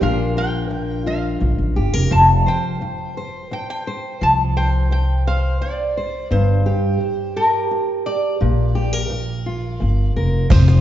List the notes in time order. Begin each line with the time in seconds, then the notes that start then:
0.01 A#1 A#2 F3 D4 F4 A#4 F5
0.37 A#4 G5
0.70 muted steel-string acoustic guitar stroke
1.06 F4 F5
1.40 A#1, muted steel-string acoustic guitar stroke
1.58 A1
1.76 G1 G4
1.93 F1 A#4
2.11 F1 F3 A5
2.46 C5 G5
2.81 muted steel-string acoustic guitar stroke
3.17 C5
3.51 G5, muted steel-string acoustic guitar stroke
3.70 G5
3.87 C5
4.21 C2 F3 A5
4.57 C5 G5
4.91 G5, muted steel-string acoustic guitar stroke
5.27 C5 F5
5.61 D5, muted steel-string acoustic guitar stroke
5.97 C5
6.31 G1 G2 C5
6.66 G4
7.01 muted steel-string acoustic guitar stroke
7.36 G4 A#4
7.71 muted steel-string acoustic guitar stroke
8.06 G4 D5
8.41 A#1 A#2
8.75 G4
8.93 A#4
9.10 muted steel-string acoustic guitar stroke
9.46 F4
9.80 G1, muted steel-string acoustic guitar stroke
10.16 F1 A#4
10.50 F1 F3 C5, cajon bass, kick, crash
10.68 cajon slap